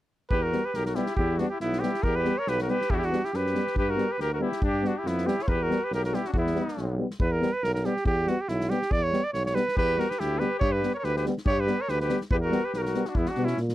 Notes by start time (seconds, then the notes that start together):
0.30 E2 G4 B4, kick
0.42 F#4 A#4
0.52 G3 B3, snare
0.65 G4 B4
0.74 B1 G4 A#4, snare
0.86 F#4 A#4, snare
0.95 G3 B3 E4 G4, snare
1.06 snare
1.16 E2 E4 G4, kick
1.38 G3 B3 D4 F#4, snare
1.49 E4 G4
1.60 B1 B3 E4, snare
1.73 snare
1.80 G3 B3 E4 G4, snare
1.94 snare
2.03 E2 G4 A#4, kick
2.15 G4 B4
2.25 G3 B3, snare
2.38 A#4 C#5
2.47 B1 G4 B4, snare
2.59 F#4 A#4, snare
2.68 G3 B3 G4 B4, snare
2.81 snare
2.90 E2 D4 E4 G4, kick
2.94 E4 F#4 G4
3.02 D4 F#4, snare
3.11 G3 B3, snare
3.24 E4 G4, snare
3.33 F#2 G4 B4, snare
3.46 snare
3.54 G3 B3, snare
3.67 snare
3.76 G2 G4 B4, kick
3.89 F#4 A#4
3.96 G3 B3, snare
4.10 G4 B4
4.19 D2 G4 A#4, snare
4.33 F#4 A#4
4.39 G3 B3 E4
4.44 G4
4.52 snare
4.62 G2 D4 G4, kick
4.83 G3 B3 D4, snare
4.87 F#4
4.97 E4 G4
5.04 F2 E4, snare
5.08 B3
5.18 snare
5.25 G3 B3 E4 G4, snare
5.39 C#5, snare
5.47 E2 G4 A#4 B4, kick
5.63 F#4 A#4
5.70 G3 B3, snare
5.84 G4 B4
5.91 B1 A#4, snare
5.95 G4
6.04 F#4 A#4, snare
6.12 G3 B3 E4 G4, snare
6.25 C#4 D4 F#4, snare
6.32 E2 D4 F#4, kick
6.38 B3 E4
6.47 snare
6.54 G3 B3, snare
6.68 snare
6.77 B1, snare
6.97 G3 B3
7.10 snare
7.19 E2 B4, kick
7.32 A#4
7.41 G3 B3, snare
7.53 B4
7.62 B1 A#4, snare
7.74 A#4, snare
7.84 G3 B3 G4, snare
7.97 snare
8.05 E2 G4, kick
8.26 G3 B3 F#4, snare
8.41 G4
8.48 B1 E4, snare
8.61 snare
8.69 G3 B3 G4, snare
8.82 snare
8.91 E2 D5, kick
9.03 C#5
9.11 G3 B3, snare
9.24 D5
9.33 B1 C#5, snare
9.45 C#5, snare
9.53 G3 B3 B4, snare
9.68 snare
9.76 E2 G4 B4, kick
9.97 G3 B3 F#4 A#4, snare
10.09 G4 B4, snare
10.19 D2 E4 G4, snare
10.39 G3 B3 G4 B4, snare
10.59 G2 G4 C#5, kick
10.72 G4 B4
10.82 G3 B3, snare
10.94 A#4 C#5
11.00 D2 A#4, snare
11.04 G4 B4
11.16 G4 B4, snare
11.25 G3 B3, snare
11.38 snare
11.45 G2 G4 C#5, kick
11.60 G4 B4
11.67 G3 B3, snare
11.80 A#4 C#5
11.88 D2 G4 B4, snare
12.00 G4 B4, snare
12.08 G3 B3, snare
12.21 snare
12.30 E2 G4 B4, kick
12.42 F#4 A#4
12.50 G3 B3, snare
12.65 G4 B4
12.73 B1 G4 B4, snare
12.78 F#4 A#4
12.83 F#4 A#4, snare
12.94 G3 B3, snare
13.05 F#4, snare
13.09 D4
13.15 E2 B3 E4, kick
13.26 F#4, snare
13.31 D4
13.35 B2 G3 B3, snare
13.45 C#4 E4, snare
13.57 A#2, snare
13.69 snare